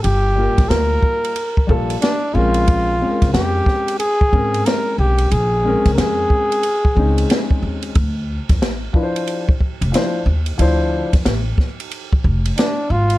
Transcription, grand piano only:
X:1
M:4/4
L:1/8
Q:"Swing 16ths" 1/4=91
K:Bb
V:1 name="Grand piano"
z [G,B,FB]3 z [G,B,FA] z [_A,C_DB]- | [_A,C_DB] [A,CD_AB]3 z [A,CDB]3 | z [_A,C_DB]3 z [A,CDE]3 | z3 [F,D=E=Bc] z2 [F,DEc] z |
[F,D=Ec] z6 z |]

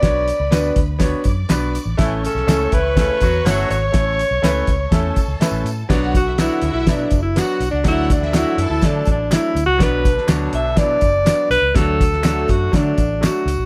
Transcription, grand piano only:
X:1
M:4/4
L:1/8
Q:1/4=123
K:Bm
V:1 name="Grand piano"
[B,DFc] z [B,DFB] z [B,DFc] z [B,DFB] z | [A,CEA] z [A,CEA] z [A,CEA] z [A,CEA] z | [A,CEA] z [A,CEB] z [A,CEA] z [A,CEB] z | [F,B,DF] z [F,B,DF] z [F,B,DE] z [F,B,DF] z |
[F,A,DF] z [F,A,DF] z [F,A,DA] z [F,A,DE] z | [F,B,DF] z [F,B,DF] z [F,B,DE] z [F,B,DF] z | [F,A,DF] z [F,A,DF] z [F,A,DF] z [F,A,DF] z |]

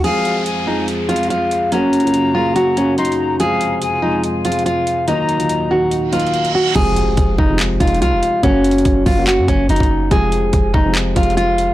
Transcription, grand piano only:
X:1
M:4/4
L:1/16
Q:1/4=143
K:Fphr
V:1 name="Grand piano"
[F,A,CF]4- [F,A,CF] z [F,A,CF]3 z [F,A,CF]4- [F,A,CF] z | [G,B,DG]2 z [G,B,DF]2 z [G,B,DA]3 z [G,B,DG]4- [G,B,DG] z | [F,A,CF]4- [F,A,CF] z [F,A,CF]3 z [F,A,CF]4- [F,A,CF] z | [E,G,B,E]2 z [E,G,B,F]2 z [E,G,B,E]3 z [E,G,B,E]4- [E,G,B,E] z |
[C,F,A,CF]6 z [C,F,A,CF]2 z [C,F,A,CE]4- [C,F,A,CE] z | [D,G,B,DG]6 z [D,G,B,DG]6 z3 | [C,F,A,CF]6 z [C,F,A,CF]2 z [C,F,A,CF]4- [C,F,A,CF] z |]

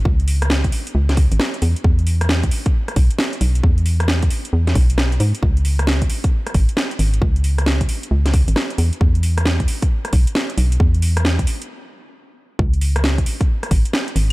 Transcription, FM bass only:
X:1
M:4/4
L:1/16
Q:"Swing 16ths" 1/4=134
K:C#m
V:1 name="FM bass" clef=bass
C,,6 z2 C,,3 G,,, z2 E,, z | E,,6 z4 B,,, z3 B,,,2 | E,,6 z2 E,,2 B,,,4 G,, z | C,,6 z4 G,,, z3 G,,,2 |
C,,6 z2 C,,3 G,,, z2 E,, z | E,,6 z4 B,,, z3 B,,,2 | E,,6 z8 z2 | C,,6 z4 G,,, z3 G,,,2 |]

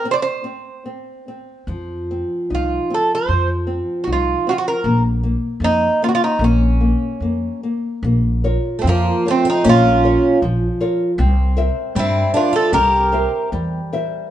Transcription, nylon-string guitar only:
X:1
M:2/4
L:1/8
Q:1/4=76
K:Fphr
V:1 name="Nylon-string guitar"
C C C C | F, C E C | F, C E C | B, B, B, B, |
B, B, B, B, | B, [FBd] F, [FBd] | B, [FBd] F, [FBd] | C [Bc=e] =G, [Bce] |
C [Bc=e] =G, [Bce] |]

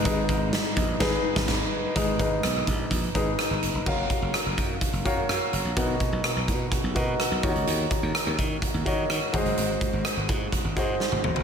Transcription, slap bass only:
X:1
M:4/4
L:1/16
Q:1/4=126
K:G#dor
V:1 name="Slap bass" clef=bass
G,,,2 G,,,3 z A,,,2 G,,,2 z G,,, G,,,2 z2 | G,,,2 G,,,2 B,,,2 A,,,2 A,,,2 G,,,2 z G,,, F,,, E,,, | F,,,2 z F,,, z F,,, F,,2 z F,,, F,,2 F,, z F,,, A,,, | B,,,2 z B,,, z B,,, B,,2 z B,,, B,,2 z B,,, D,, C,, |
D,,2 z D,, z D,, D,2 z D,, D,2 D, z G,,, F,,, | G,,,2 z G,,, z G,,, G,,2 z G,,, G,,2 z G,,, F,,, E,,, |]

